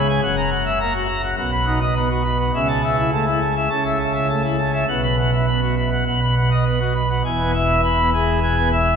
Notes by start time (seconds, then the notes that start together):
Already playing: C#2 C#3
0.08 G#5
0.22 F#1 F#2 F#5
0.37 A#5
0.51 F#5
0.66 E5
0.80 A#3 A#5
0.94 F#4
1.08 A#5
1.23 F#5
1.37 B1 B2 F#5
1.52 B5
1.66 D#4 F#5
1.81 D#5
1.96 B3 B5
2.10 F#4
2.25 B5
2.39 F#5
2.54 C#2 C#3 E5
2.68 A5
2.83 E5
2.97 E4
3.12 A3 A5
3.26 E4
3.41 A5
3.56 E5
3.70 C#2 C#3 A5
3.85 E5
3.99 A5
4.14 E5
4.29 A3 A5
4.43 E4
4.58 A5
4.73 E5
4.88 B1 B2 F#5
5.03 B5
5.18 F#5
5.32 E5
5.47 B3 B5
5.62 F#4
5.76 B5
5.92 F#5
6.06 B1 B2 F#5
6.21 B5
6.36 F#5
6.51 D#5
6.65 B3 B5
6.79 F#4
6.95 B5
7.10 F#5
7.24 E1 E2 G#5
7.39 B3
7.54 E5
7.84 B5
7.99 B3
8.13 G#4
8.42 B2 G#5
8.57 B3
8.72 E5